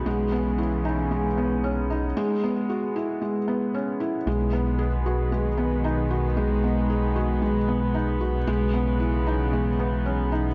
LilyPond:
<<
  \new Staff \with { instrumentName = "Felt piano" } { \time 4/4 \key b \major \tempo 4 = 114 gis8 b8 e'8 dis'8 gis8 b8 cis'8 dis'8 | gis8 b8 fis'8 e'8 gis8 b8 cis'8 e'8 | gis8 b8 gis'8 fis'8 gis8 b8 dis'8 fis'8 | gis8 b8 gis'8 fis'8 gis8 b8 dis'8 fis'8 |
gis8 b8 e'8 dis'8 gis8 b8 cis'8 dis'8 | }
  \new Staff \with { instrumentName = "String section" } { \clef bass \time 4/4 \key b \major << { b1 | r1 | b1~ | b1~ |
b1 | } \\ { <cis e>1 | r1 | <dis gis>1~ | <dis gis>1 |
<cis e>1 | } >> }
  \new Staff \with { instrumentName = "Detuned saw bass" } { \clef bass \time 4/4 \key b \major b,,1 | r1 | b,,1~ | b,,1 |
b,,1 | }
>>